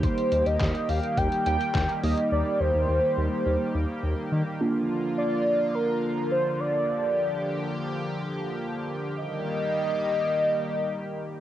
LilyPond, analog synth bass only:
\new Staff \with { instrumentName = "Analog synth bass" } { \clef bass \time 4/4 \key ees \major \tempo 4 = 105 r8 ees,16 ees,16 ees,16 r16 ees,16 r16 ees,16 r16 ees,16 r16 ees,16 r16 ees,16 r16 | ees,16 r16 ees,16 ees,16 ees,16 r16 ees,16 r16 ees,16 r16 ees,16 r16 ees,16 r16 ees16 r16 | r1 | r1 |
r1 | }